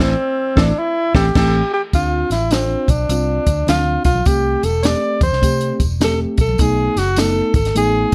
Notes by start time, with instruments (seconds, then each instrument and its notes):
0.00 fingered electric bass A1, reed electric piano E3 A3 C4 E4, tenor saxophone C4, snare
0.56 fingered electric bass A1, reed electric piano E3 A3 C4 E4, saxophone section E3 C4 A4, tenor saxophone D4, kick, snare
0.79 tenor saxophone E4
1.14 fingered electric bass A1, saxophone section E3 C4 A4, reed electric piano E3 A3 C4, tenor saxophone G4, kick, snare
1.35 fingered electric bass A1, saxophone section E3 C4 A4, reed electric piano E3 A3 C4, tenor saxophone G4, kick, snare, crash
1.73 tenor saxophone G4
1.93 fingered electric bass D2, reed electric piano C4 D4 F4, tenor saxophone F4, kick, closed hi-hat, tambourine
2.30 fingered electric bass A1, tenor saxophone E4, snare, closed hi-hat, tambourine, muted conga
2.50 reed electric piano C4 D4 F4, tenor saxophone C4, snare, closed hi-hat, tambourine, high conga
2.88 fingered electric bass B1, tenor saxophone D4, kick, closed hi-hat, tambourine, low conga
3.09 fingered electric bass C2, reed electric piano C4 D4 F4, closed hi-hat, tambourine, muted conga
3.46 fingered electric bass D2, kick, closed hi-hat, tambourine, muted conga
3.67 fingered electric bass D2, reed electric piano C4 D4 F4, tenor saxophone F4, snare, closed hi-hat, tambourine, high conga
3.86 high conga
4.05 fingered electric bass B1, tenor saxophone F4, kick, closed hi-hat, tambourine
4.15 high conga
4.25 fingered electric bass C2, reed electric piano A3 C4 G4, tenor saxophone G4, kick, closed hi-hat, tambourine
4.63 fingered electric bass E1, tenor saxophone A4, closed hi-hat, tambourine, muted conga
4.83 reed electric piano A3 C4 G4, tenor saxophone D5, snare, closed hi-hat, tambourine, high conga
5.21 fingered electric bass E2, tenor saxophone C5, kick, closed hi-hat, tambourine, low conga
5.32 fingered electric bass C2, snare
5.42 fingered electric bass C3, reed electric piano A3 C4 G4, kick, closed hi-hat, tambourine, muted conga
5.61 closed hi-hat
5.80 fingered electric bass E1, kick, closed hi-hat, tambourine, muted conga
6.00 reed electric piano A3 C4 G4, tenor saxophone A4, snare, closed hi-hat, tambourine, high conga
6.20 high conga
6.38 fingered electric bass B1, tenor saxophone A4, kick, closed hi-hat, tambourine
6.49 high conga
6.58 fingered electric bass B1, reed electric piano A3 B3 D#4, tenor saxophone G#4, kick, closed hi-hat, tambourine
6.96 fingered electric bass F#1, tenor saxophone F#4, snare, closed hi-hat, tambourine, muted conga
7.16 reed electric piano A3 B3 D#4, tenor saxophone A4, snare, closed hi-hat, tambourine, high conga
7.54 fingered electric bass G#1, tenor saxophone A4, kick, closed hi-hat, tambourine, low conga
7.65 snare, closed hi-hat
7.75 fingered electric bass A1, reed electric piano A3 B3 D#4, tenor saxophone G#4, closed hi-hat, tambourine, muted conga